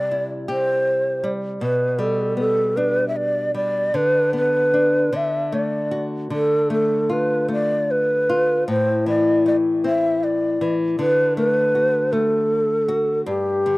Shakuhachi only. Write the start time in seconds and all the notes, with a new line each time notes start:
Already playing: D5
0.50 C5
1.61 B4
2.00 A4
2.39 A4
2.77 B4
3.08 E5
3.16 D5
3.56 D5
3.95 B4
4.36 B4
5.15 E5
5.54 D5
6.33 A4
6.72 A4
7.12 B4
7.52 D5
7.91 B4
8.69 C5
9.08 D5
9.48 D5
9.86 E5
10.24 D5
10.99 B4
11.37 A#4
11.50 B4
12.12 A4
13.27 G4